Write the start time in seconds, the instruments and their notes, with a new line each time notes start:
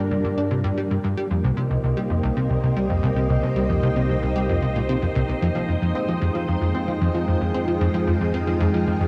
Already playing: synth drone G2, string machine G3 D4 F4 A#4 D5, synth texture G5
0.11 analog synth bass G2
0.24 analog synth bass G2
0.38 analog synth bass D4
0.51 analog synth bass C3
0.64 analog synth bass G2
0.78 analog synth bass G3
0.91 analog synth bass G2
1.04 analog synth bass G2
1.17 synth drone C2, analog synth bass G3, string machine A#3
1.31 analog synth bass F2
1.35 string machine D#4
1.44 analog synth bass C2, string machine C5
1.53 string machine D#5
1.57 analog synth bass C3
1.67 analog synth bass C2, string machine G4
1.84 analog synth bass C2
1.97 analog synth bass G3
2.10 analog synth bass F2
2.23 analog synth bass C2
2.37 analog synth bass C3
2.50 analog synth bass C2
2.63 analog synth bass C2
2.77 analog synth bass G3
2.90 analog synth bass F2
3.03 analog synth bass C2
3.16 analog synth bass C3
3.30 analog synth bass C2
3.43 analog synth bass C2
3.56 analog synth bass G3
3.69 analog synth bass F2
3.83 analog synth bass C2
3.96 analog synth bass C3
4.09 analog synth bass C2
4.22 analog synth bass C2
4.36 analog synth bass G3
4.49 analog synth bass F2
4.62 analog synth bass C3
4.76 analog synth bass A#2
4.89 analog synth bass C3
5.02 analog synth bass F2
5.15 analog synth bass C2
5.29 analog synth bass C2
5.42 analog synth bass F2, synth drone F2, string machine G#3
5.55 analog synth bass F3
5.69 analog synth bass F2, string machine F4
5.82 analog synth bass F2
5.95 analog synth bass C4
6.08 analog synth bass F3
6.22 analog synth bass F2
6.35 analog synth bass F3
6.48 analog synth bass F2
6.61 analog synth bass F2
6.75 analog synth bass C4
6.88 analog synth bass F3
7.01 analog synth bass F2
7.15 analog synth bass F3
7.28 analog synth bass F2
7.41 analog synth bass F2
7.54 analog synth bass C4
7.68 analog synth bass F3
7.81 analog synth bass F2
7.94 analog synth bass F3
8.07 analog synth bass F2
8.21 analog synth bass F2
8.34 analog synth bass C4
8.47 analog synth bass F3
8.61 analog synth bass F2
8.74 analog synth bass F3
8.87 analog synth bass F2
9.00 analog synth bass F2